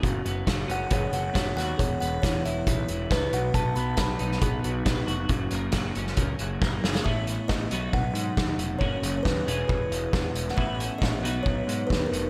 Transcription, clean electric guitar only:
\new Staff \with { instrumentName = "Clean electric guitar" } { \time 4/4 \key b \major \tempo 4 = 136 fis,8 b8 fis8 cis'8 b8 fis8 b8 fis'8 | e,8 b8 e8 e'8 b8 e8 b8 b,8 | b,8 b8 fis8 dis'8 b8 fis8 b8 fis'8 | fis8 ais8 fis8 cis'8 ais8 fis8 ais8 gis'8 |
<a, e b cis' e'>4. <b, fis b dis' fis'>2~ <b, fis b dis' fis'>8 | <fis, cis fis ais cis' fis'>4. <e, b, e gis b gis'>2~ <e, b, e gis b gis'>8 | <a, e b cis' e'>4. <b, fis b dis' fis'>2~ <b, fis b dis' fis'>8 | }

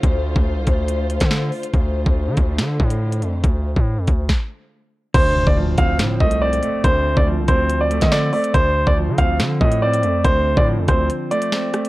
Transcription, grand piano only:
\new Staff \with { instrumentName = "Grand piano" } { \time 4/4 \key d \minor \tempo 4 = 141 r1 | r1 | r1 | c''8. d''16 r8 f''8 r8 ees''8 d''4 |
c''8. d''16 r8 c''8. d''8 ees''16 d''8 d''8 | c''8. d''16 r8 f''8 r8 ees''8 d''4 | c''8. d''16 r8 c''8 r8 d''4. | }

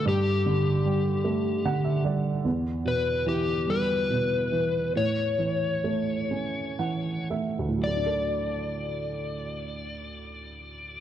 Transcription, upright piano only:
<<
  \new Staff \with { instrumentName = "Upright piano" } { \time 6/8 \key d \major \tempo 4. = 46 r2 fis''16 e''16 d''8 | r2. | r2 fis''8 e''8 | r2. | }
  \new Staff \with { instrumentName = "Upright piano" } { \clef bass \time 6/8 \key d \major g,8 d8 g8 a8 d8 g8 | e,8 b,8 e8 g8 b,8 e8 | a,8 e8 a8 cis'8 e8 a8 | <d, a, fis a d' a'>2. | }
>>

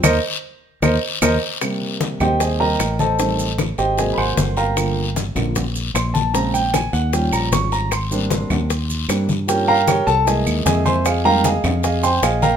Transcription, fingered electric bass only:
\new Staff \with { instrumentName = "Fingered electric bass" } { \clef bass \time 4/4 \key aes \lydian \tempo 4 = 152 ees,8 r4. ees,8 r8 ees,8 r8 | r4. ees,4. a,,4~ | a,,4. aes,,4 aes,,8 g,,4~ | g,,4. bes,,4. bes,,4~ |
bes,,4. ees,4 bes,,8 aes,,4~ | aes,,4. ees,4. g,4~ | g,4. c,4 dis,8 f,4~ | f,4. f,4. bes,,4 | }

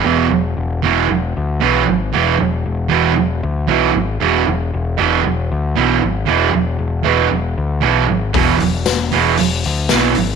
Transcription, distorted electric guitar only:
\new Staff \with { instrumentName = "Distorted electric guitar" } { \clef bass \time 4/4 \key e \mixolydian \tempo 4 = 116 <e, b, e>8 r4 <e, b, e>8 r4 <e, b, e>8 r8 | <e, b, e>8 r4 <e, b, e>8 r4 <e, b, e>8 r8 | <e, b, e>8 r4 <e, b, e>8 r4 <e, b, e>8 r8 | <e, b, e>8 r4 <e, b, e>8 r4 <e, b, e>8 r8 |
<e, b, e>8 r4 <e, b, e>8 r4 <e, b, e>8 r8 | }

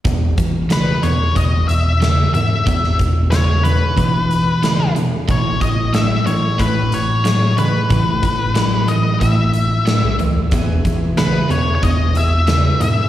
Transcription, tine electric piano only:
\new Staff \with { instrumentName = "Tine electric piano" } { \clef bass \time 4/4 \key e \major \tempo 4 = 92 e,8 e4 e,8 e,8 e,4 gis,8 | e,8 e,4. e2 | a,8 a,4 a,8 a,8 a,4 cis8 | a,8 a,4. a,4~ a,16 b,,16 cis,16 dis,16 |
e,8 e4 e,8 e,8 e,4 gis,8 | }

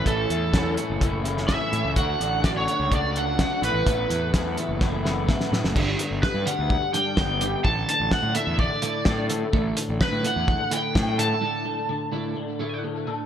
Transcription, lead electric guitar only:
\new Staff \with { instrumentName = "Lead electric guitar" } { \time 4/4 \key a \mixolydian \tempo 4 = 127 a'4. r4. e''4 | fis''4 d''16 cis''8. d''8 fis''4 b'8~ | b'4 r2. | r4 b'8 fis''4 g''4. |
a''8 a''8 fis''8 e''8 d''4. r8 | r4 b'8 fis''4 g''4 a''8~ | a''2. r4 | }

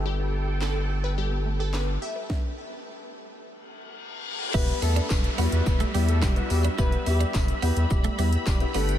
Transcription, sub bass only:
\new Staff \with { instrumentName = "Sub bass" } { \clef bass \time 4/4 \key e \minor \tempo 4 = 107 g,,2.~ g,,8 r8 | r1 | e,,8 e,8 e,,8 e,16 e,16 e,,8 e,8 e,,8 e,8 | e,,8 e,8 e,,8 e,16 e,16 e,,8 e,8 e,,8 g,,8 | }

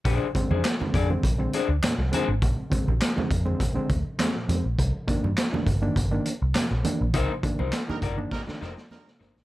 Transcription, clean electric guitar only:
\new Staff \with { instrumentName = "Clean electric guitar" } { \time 4/4 \key bes \mixolydian \tempo 4 = 102 <d' aes' c''>16 r8 <d' aes' c''>16 r8 <d' aes' d''>16 r8. <d' aes' c''>16 r8. <d' aes' c''>16 r16 | r1 | r1 | <ees' bes' c''>16 r8 <ees' bes' c''>16 r8 <ees' bes' d''>16 r8. <ees' bes' c''>16 r8. <ees' bes' c''>16 r16 | }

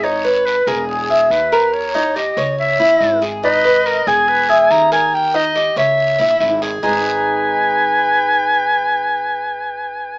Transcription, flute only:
\new Staff \with { instrumentName = "Flute" } { \time 4/4 \key cis \dorian \tempo 4 = 141 cis''4 b'8 ais'8 gis'4 b'4 | cis''4 dis''4 e''4. r8 | \key gis \minor b'4 ais'8 gis'8 b'8 gis'4. | r1 |
b'1~ | b'1 | }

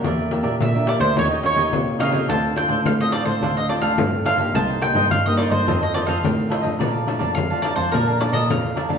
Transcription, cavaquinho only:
\new Staff \with { instrumentName = "Cavaquinho" } { \time 4/4 \key bes \major \tempo 4 = 107 <g' bes' d'' e''>8 <g' bes' d'' e''>16 <g' bes' d'' e''>16 r16 <bes' d'' e''>16 <g' bes' d'' e''>16 <bes' d'' e''>16 <ees' g' des'' ees''>16 <g' des'' ees''>16 <ees' g' des'' ees''>16 <ees' g' des'' ees''>16 r8 <ees' g' des'' ees''>16 <g' des'' ees''>16 | <d' a' c'' f''>8 <d' a' c'' f''>16 <d' a' c'' f''>16 r16 <a' c'' f''>16 <d' a' c'' f''>16 <a' c'' f''>16 <d' a' c'' f''>16 <a' c'' f''>16 <d' a' c'' f''>16 <d' a' c'' f''>16 r8 <d' a' c'' f''>16 <a' c'' f''>16 | <ees' bes' c'' ees''>8 <ees' bes' c'' ees''>16 <ees' bes' c'' ees''>16 r16 <bes' c'' ees''>16 <ees' bes' c'' ees''>16 <bes' c'' ees''>16 <f' a' c'' ees''>16 <a' c'' ees''>16 <f' a' c'' ees''>16 <f' a' c'' ees''>16 r8 <f' a' c'' ees''>16 <a' c'' ees''>16 | <bes' d'' f'' a''>8 <bes' d'' f'' a''>16 <bes' d'' f'' a''>16 r16 <d'' f'' a''>16 <bes' d'' f'' a''>16 <d'' f'' a''>16 <bes' d'' f'' a''>16 <d'' f'' a''>16 <bes' d'' f'' a''>16 <bes' d'' f'' a''>16 r8 <bes' d'' f'' a''>16 <d'' f'' a''>16 | }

